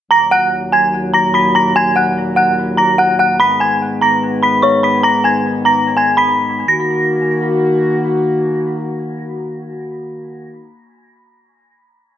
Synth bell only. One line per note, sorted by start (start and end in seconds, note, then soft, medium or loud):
0.11 0.28 A#5 medium
0.11 0.28 A#6 medium
0.31 0.48 F#5 medium
0.31 0.49 F#6 medium
0.72 0.89 G#5 medium
0.72 0.90 G#6 medium
1.14 1.30 A#5 medium
1.14 1.31 A#6 medium
1.34 1.51 B5 medium
1.34 1.51 B6 medium
1.55 1.72 A#5 medium
1.55 1.72 A#6 medium
1.76 1.92 G#5 loud
1.76 1.93 G#6 medium
1.96 2.13 F#5 medium
1.96 2.13 F#6 medium
2.36 2.53 F#5 medium
2.36 2.54 F#6 medium
2.77 2.94 A#5 medium
2.77 2.95 A#6 medium
2.98 3.15 F#5 medium
2.98 3.16 F#6 medium
3.19 3.36 F#5 medium
3.19 3.36 F#6 medium
3.40 3.56 B5 loud
3.40 3.57 B6 medium
3.60 3.77 G#5 medium
3.60 3.77 G#6 medium
4.01 4.18 A#5 medium
4.01 4.19 A#6 medium
4.43 4.59 B5 medium
4.43 4.60 B6 medium
4.62 4.80 C#5 medium
4.62 4.79 C#6 medium
4.83 5.00 B5 medium
4.83 5.01 B6 medium
5.03 5.20 A#5 loud
5.03 5.21 A#6 medium
5.24 5.41 G#5 medium
5.24 5.42 G#6 medium
5.65 5.95 A#5 medium
5.65 5.95 A#6 medium
5.97 6.14 G#5 medium
5.97 6.14 G#6 medium
6.17 6.65 B5 medium
6.17 6.65 B6 medium
6.68 7.88 A#6 medium